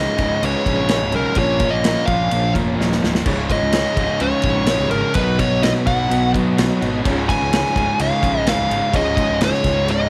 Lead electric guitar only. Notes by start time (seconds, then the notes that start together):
Already playing: D#5
0.45 C#5
1.16 A#4
1.38 C#5
1.71 D#5
2.06 F5
3.52 D#5
4.21 C#5
4.91 A#4
5.15 B4
5.40 C#5
5.63 D#5
5.87 F#5
7.29 G#5
8.01 F5
8.49 F5
8.96 D#5
9.44 C#5
9.91 D#5